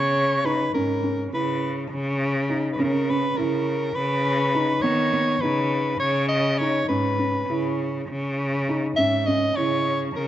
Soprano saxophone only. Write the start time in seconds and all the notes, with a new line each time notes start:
Already playing: C#5
0.46 B4
0.74 A#4
1.34 B4
2.72 B4
2.81 A#4
3.10 B4
3.37 A#4
3.95 B4
4.82 C#5
5.41 B4
6.00 C#5
6.28 D#5
6.58 C#5
6.88 B4
8.96 E5
9.27 D#5
9.56 C#5
10.16 A#4